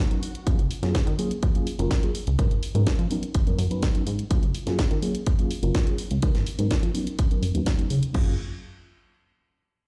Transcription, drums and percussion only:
0.11 closed hi-hat
0.23 open hi-hat
0.35 closed hi-hat
0.47 kick, closed hi-hat
0.59 closed hi-hat
0.71 open hi-hat
0.83 snare, closed hi-hat
0.95 kick, snare, closed hi-hat
1.07 closed hi-hat
1.19 open hi-hat
1.31 closed hi-hat
1.43 kick, closed hi-hat
1.55 closed hi-hat
1.67 open hi-hat
1.79 closed hi-hat
1.91 kick, snare, closed hi-hat
2.03 closed hi-hat
2.15 open hi-hat
2.27 closed hi-hat
2.39 kick, closed hi-hat
2.51 closed hi-hat
2.63 open hi-hat
2.75 closed hi-hat
2.87 kick, snare, closed hi-hat
2.99 closed hi-hat
3.11 open hi-hat
3.23 closed hi-hat
3.35 kick, closed hi-hat
3.47 closed hi-hat
3.59 open hi-hat
3.71 closed hi-hat
3.83 kick, snare, closed hi-hat
3.95 closed hi-hat
4.07 open hi-hat
4.19 closed hi-hat
4.31 kick, closed hi-hat
4.43 closed hi-hat
4.55 open hi-hat
4.67 snare, closed hi-hat
4.79 kick, snare, closed hi-hat
4.91 closed hi-hat
5.02 open hi-hat
5.15 closed hi-hat
5.26 kick, closed hi-hat
5.39 closed hi-hat
5.51 open hi-hat
5.63 closed hi-hat
5.75 kick, snare, closed hi-hat
5.87 closed hi-hat
5.98 open hi-hat
6.11 closed hi-hat
6.22 kick, closed hi-hat
6.35 snare, closed hi-hat
6.47 open hi-hat
6.59 closed hi-hat
6.71 kick, snare, closed hi-hat
6.83 closed hi-hat
6.95 open hi-hat
7.07 closed hi-hat
7.19 kick, closed hi-hat
7.31 closed hi-hat
7.43 open hi-hat
7.55 closed hi-hat
7.66 kick, snare, closed hi-hat
7.79 closed hi-hat
7.90 open hi-hat
8.03 closed hi-hat
8.14 kick, crash

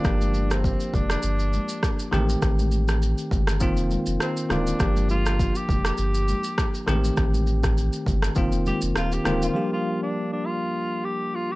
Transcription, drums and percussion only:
0.05 kick, cross-stick, shaker
0.21 high conga, shaker
0.34 high conga, shaker
0.51 cross-stick, shaker
0.64 kick, shaker
0.80 shaker
0.94 kick, high conga, low conga, shaker
1.10 cross-stick, shaker
1.23 shaker
1.39 shaker
1.53 high conga, shaker
1.69 shaker
1.83 kick, cross-stick, shaker
1.99 shaker
2.13 cross-stick, high conga, low conga, shaker
2.29 shaker
2.42 kick, cross-stick, shaker
2.58 high conga, shaker
2.72 high conga, shaker
2.88 cross-stick, shaker
3.02 shaker
3.18 shaker
3.31 kick, high conga, low conga, shaker
3.47 cross-stick, shaker
3.60 kick, shaker
3.77 shaker
3.91 high conga, shaker
4.06 shaker
4.20 cross-stick, shaker
4.37 shaker
4.50 cross-stick, high conga, low conga, shaker
4.67 shaker
4.80 kick, cross-stick, shaker
4.96 high conga, shaker
5.09 high conga, shaker
5.26 cross-stick, shaker
5.39 kick, shaker
5.55 shaker
5.69 kick, high conga, low conga, shaker
5.85 cross-stick, shaker
5.98 shaker
6.14 shaker
6.28 high conga, shaker
6.44 shaker
6.58 kick, cross-stick, shaker
6.74 shaker
6.88 cross-stick, high conga, low conga, shaker
7.04 shaker
7.17 kick, cross-stick, shaker
7.34 high conga, shaker
7.47 high conga, shaker
7.63 kick, cross-stick, shaker
7.78 shaker
7.93 shaker
8.06 kick, high conga, low conga, shaker
8.22 cross-stick, shaker
8.35 kick, shaker
8.52 shaker
8.66 high conga, shaker
8.81 shaker
8.96 cross-stick, shaker
9.12 shaker
9.25 cross-stick, high conga, low conga, shaker
9.42 shaker

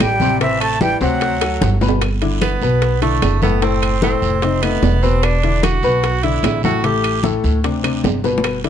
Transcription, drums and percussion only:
0.00 high bongo, low bongo, high conga, high timbale, low timbale, short guiro, claves
0.20 high conga, short guiro
0.40 high bongo, high conga, high timbale, long guiro
0.60 high bongo, high conga, high timbale, claves
0.81 high bongo, high conga, low timbale, short guiro
1.01 high bongo, short guiro
1.21 high bongo, high conga, high timbale, long guiro
1.41 high bongo, high conga, high timbale, claves
1.61 high bongo, high conga, high timbale, short guiro
1.81 low bongo, high conga, short guiro
1.89 low timbale
2.01 high bongo, high conga, high timbale, long guiro, claves
2.21 high bongo, high conga, high timbale
2.41 high bongo, high conga, high timbale, low timbale, short guiro, claves
2.62 high bongo, high conga, short guiro
2.82 high bongo, high conga, high timbale, long guiro
3.02 high bongo, high conga, high timbale
3.22 high bongo, low bongo, high conga, high timbale, low timbale, short guiro, claves
3.42 high conga, short guiro
3.62 high bongo, high conga, high timbale, long guiro
3.82 high bongo, high conga, high timbale, claves
4.02 high bongo, high conga, low timbale, short guiro
4.22 high bongo, short guiro
4.42 high bongo, high conga, high timbale, long guiro
4.62 high bongo, high conga, high timbale, claves
4.82 high bongo, low bongo, high conga, low timbale, short guiro
5.02 high conga, short guiro
5.23 high bongo, high conga, high timbale, long guiro, claves
5.43 high bongo, high conga, high timbale
5.63 high bongo, high conga, high timbale, low timbale, short guiro, claves
5.83 high bongo, high conga, short guiro
6.03 high bongo, high conga, high timbale, long guiro
6.23 high bongo, high conga, high timbale
6.43 high bongo, low bongo, high conga, high timbale, low timbale, short guiro, claves
6.63 high conga, short guiro
6.84 high bongo, high conga, high timbale, long guiro
7.04 high bongo, high conga, high timbale, claves
7.23 high bongo, high conga, low timbale, short guiro
7.44 high bongo, short guiro
7.64 high bongo, high conga, high timbale, long guiro
7.84 high bongo, high conga, high timbale, claves
8.04 high bongo, low bongo, high conga, low timbale, short guiro
8.24 high bongo, high conga, short guiro
8.38 low bongo
8.44 high bongo, high conga, high timbale, long guiro, claves
8.64 high bongo, high conga, high timbale

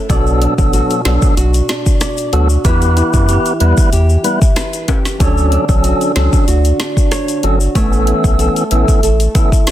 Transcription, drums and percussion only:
0.10 kick, closed hi-hat, shaker
0.27 shaker
0.42 closed hi-hat
0.58 kick, shaker
0.73 closed hi-hat, shaker
0.90 closed hi-hat, shaker
1.05 snare, closed hi-hat
1.22 kick, shaker
1.37 closed hi-hat, shaker
1.54 closed hi-hat, shaker
1.69 snare, closed hi-hat, shaker
1.86 kick, shaker
2.01 cross-stick, snare, closed hi-hat, shaker
2.17 closed hi-hat, shaker
2.33 closed hi-hat
2.49 shaker
2.65 kick, closed hi-hat, shaker
2.82 closed hi-hat, shaker
2.97 closed hi-hat, shaker
3.13 kick, shaker
3.29 closed hi-hat, shaker
3.46 closed hi-hat, shaker
3.60 closed hi-hat
3.77 kick, shaker
3.93 closed hi-hat, shaker
4.09 shaker
4.24 closed hi-hat, shaker
4.42 kick, shaker
4.56 cross-stick, snare, closed hi-hat, shaker
4.73 closed hi-hat, shaker
4.88 kick, closed hi-hat, high timbale, shaker
5.05 snare, shaker
5.20 kick, closed hi-hat, shaker
5.37 shaker
5.52 closed hi-hat
5.69 kick, shaker
5.84 closed hi-hat, shaker
6.01 closed hi-hat, shaker
6.16 snare, closed hi-hat
6.33 kick, shaker
6.48 closed hi-hat, shaker
6.65 closed hi-hat, shaker
6.80 snare, closed hi-hat, shaker
6.97 kick, shaker
7.11 cross-stick, snare, closed hi-hat, shaker
7.28 closed hi-hat, shaker
7.43 closed hi-hat
7.60 shaker
7.75 kick, closed hi-hat, shaker
7.93 shaker
8.07 closed hi-hat
8.24 kick, shaker
8.39 closed hi-hat, shaker
8.56 closed hi-hat, shaker
8.71 closed hi-hat
8.88 kick, shaker
9.03 closed hi-hat, shaker
9.20 closed hi-hat, shaker
9.35 kick, closed hi-hat, shaker
9.52 kick, shaker
9.67 cross-stick, snare, closed hi-hat, shaker

